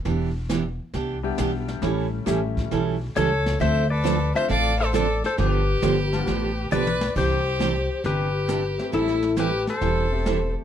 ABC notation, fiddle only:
X:1
M:4/4
L:1/8
Q:"Swing" 1/4=135
K:C
V:1 name="Fiddle"
z8 | z6 A2 | c A2 c d A A A | G6 B2 |
G4 G4 | E2 G A4 z |]